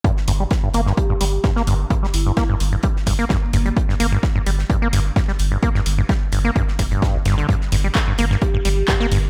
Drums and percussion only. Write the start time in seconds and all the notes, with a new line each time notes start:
0.04 kick, closed hi-hat
0.17 snare
0.28 closed hi-hat, open hi-hat
0.51 kick, snare, closed hi-hat
0.74 closed hi-hat, open hi-hat
0.87 snare
0.97 kick, closed hi-hat
1.21 closed hi-hat, open hi-hat
1.44 kick, snare, closed hi-hat
1.56 snare
1.67 closed hi-hat, open hi-hat
1.90 kick, closed hi-hat
2.04 snare
2.13 closed hi-hat, open hi-hat
2.37 kick, snare, closed hi-hat
2.60 closed hi-hat, open hi-hat
2.83 kick, closed hi-hat
2.96 snare
3.06 kick, open hi-hat
3.20 closed hi-hat
3.29 kick, snare, closed hi-hat
3.53 closed hi-hat, open hi-hat
3.66 closed hi-hat
3.77 kick, closed hi-hat
3.89 snare
4.00 closed hi-hat, open hi-hat
4.23 kick, snare, closed hi-hat
4.46 closed hi-hat, open hi-hat
4.59 snare
4.70 kick, closed hi-hat
4.93 closed hi-hat, open hi-hat
5.16 kick, snare, closed hi-hat
5.28 snare
5.39 closed hi-hat, open hi-hat
5.63 kick, closed hi-hat
5.75 snare
5.86 closed hi-hat, open hi-hat
6.09 kick, snare, closed hi-hat
6.32 closed hi-hat, open hi-hat
6.56 kick, closed hi-hat
6.68 snare
6.79 kick, open hi-hat
6.92 closed hi-hat
7.02 kick, snare, closed hi-hat
7.25 snare, closed hi-hat, open hi-hat
7.38 closed hi-hat
7.49 kick, closed hi-hat
7.61 snare
7.72 closed hi-hat, open hi-hat
7.95 kick, snare, clap, closed hi-hat
8.18 closed hi-hat, open hi-hat
8.31 snare
8.42 kick, closed hi-hat
8.65 closed hi-hat, open hi-hat
8.88 kick, snare, clap, closed hi-hat
9.00 snare
9.12 closed hi-hat, open hi-hat